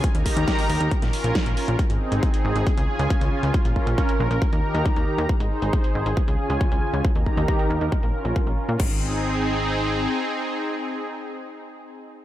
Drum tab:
CC |----------------|----------------|----------------|----------------|
HH |xxoxxooxxxoxxxox|xx-xxx-xxx-xxx-x|xx-xxx-xxx-xxx-x|xx-xxx-xxx-xxx-x|
SD |----o----o--o---|----------------|----------------|----------------|
BD |o-o-o---o---o---|o---o---o---o---|o-o-o---o---o---|o---o---o---o---|

CC |----------------|x---------------|----------------|
HH |xx-xxx-xxx-xxx-x|----------------|----------------|
SD |----------------|----------------|----------------|
BD |o-o-o---o---o---|o---------------|----------------|